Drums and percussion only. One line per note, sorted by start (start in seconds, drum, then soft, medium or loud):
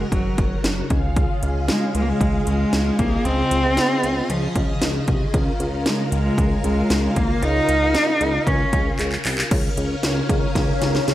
0.12 kick medium
0.12 closed hi-hat medium
0.38 kick medium
0.38 closed hi-hat medium
0.64 snare loud
0.64 closed hi-hat medium
0.90 kick medium
0.90 closed hi-hat medium
1.17 kick loud
1.17 closed hi-hat medium
1.43 closed hi-hat medium
1.68 snare loud
1.68 closed hi-hat medium
1.95 closed hi-hat medium
2.21 kick medium
2.21 closed hi-hat medium
2.47 closed hi-hat medium
2.73 snare loud
2.73 closed hi-hat medium
2.99 kick medium
2.99 closed hi-hat medium
3.25 closed hi-hat medium
3.51 closed hi-hat medium
3.77 snare loud
3.77 closed hi-hat medium
4.04 closed hi-hat medium
4.30 closed hi-hat medium
4.56 kick medium
4.56 closed hi-hat medium
4.82 snare loud
4.82 closed hi-hat medium
5.08 kick medium
5.08 closed hi-hat medium
5.34 kick loud
5.34 closed hi-hat medium
5.60 closed hi-hat medium
5.86 snare loud
5.86 closed hi-hat medium
6.12 closed hi-hat medium
6.38 kick medium
6.38 closed hi-hat medium
6.64 closed hi-hat medium
6.90 snare loud
6.90 closed hi-hat medium
7.16 kick medium
7.16 closed hi-hat medium
7.43 closed hi-hat medium
7.69 closed hi-hat medium
7.95 snare loud
7.95 closed hi-hat medium
8.21 closed hi-hat medium
8.47 kick medium
8.47 closed hi-hat medium
8.73 kick medium
8.73 closed hi-hat medium
8.99 clap medium
8.99 closed hi-hat medium
9.12 clap medium
9.25 clap medium
9.25 open hi-hat medium
9.38 clap loud
9.51 kick loud
9.51 closed hi-hat medium
9.51 crash loud
9.77 closed hi-hat medium
10.03 snare loud
10.03 closed hi-hat medium
10.29 kick medium
10.29 closed hi-hat medium
10.55 kick loud
10.55 snare medium
10.55 closed hi-hat medium
10.82 snare medium
10.82 closed hi-hat medium
10.95 snare medium
11.08 snare medium
11.08 closed hi-hat medium